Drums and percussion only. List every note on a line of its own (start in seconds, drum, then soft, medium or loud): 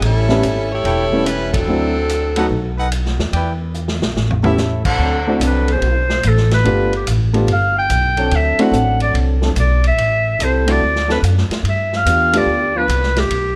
0.02 ride medium
0.29 snare soft
0.43 hi-hat pedal soft
0.43 ride medium
0.85 ride soft
1.26 hi-hat pedal medium
1.26 ride medium
1.54 kick medium
1.54 ride medium
2.09 hi-hat pedal medium
2.09 ride medium
2.36 ride medium
2.92 hi-hat pedal soft
2.92 ride medium
3.06 snare soft
3.19 snare soft
3.33 ride medium
3.74 hi-hat pedal soft
3.88 snare soft
4.02 snare medium
4.17 snare medium
4.30 floor tom medium
4.44 floor tom medium
4.58 snare medium
4.58 hi-hat pedal soft
4.85 kick medium
4.85 crash medium
5.41 hi-hat pedal medium
5.41 ride medium
5.68 ride soft
5.82 ride medium
6.10 snare soft
6.23 hi-hat pedal medium
6.23 ride medium
6.37 snare soft
6.51 snare soft
6.51 ride soft
6.65 ride soft
6.93 ride soft
7.07 hi-hat pedal medium
7.07 ride medium
7.34 ride soft
7.48 ride medium
7.90 hi-hat pedal soft
7.90 ride medium
8.17 ride soft
8.31 ride medium
8.59 ride medium
8.73 hi-hat pedal medium
9.00 ride soft
9.15 ride medium
9.42 snare soft
9.56 hi-hat pedal medium
9.56 ride medium
9.84 ride soft
9.98 ride medium
10.40 hi-hat pedal medium
10.40 ride medium
10.68 ride medium
10.96 snare soft
11.09 snare soft
11.24 hi-hat pedal medium
11.24 ride medium
11.38 snare soft
11.51 snare soft
11.51 ride soft
11.65 ride medium
11.93 snare soft
12.06 hi-hat pedal medium
12.06 ride medium
12.33 ride medium
12.89 hi-hat pedal soft
12.89 ride medium
13.03 snare soft
13.16 snare soft
13.16 ride medium
13.30 ride medium